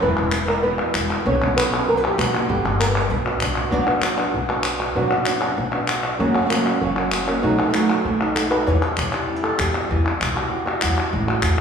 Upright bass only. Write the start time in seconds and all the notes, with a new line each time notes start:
0.02 E1
0.18 E1
0.95 E1
1.26 B1
1.42 B1
2.18 B1
2.49 G1
2.65 G1
3.11 B1
3.42 B1
3.73 B1
4.34 B1
4.96 B1
5.57 B1
6.20 F#1
6.81 F#1
7.44 B1
8.05 B1
8.67 E2
8.98 B1
9.59 E2
9.91 E2
10.21 B1
10.83 E2
11.13 A1
11.43 E2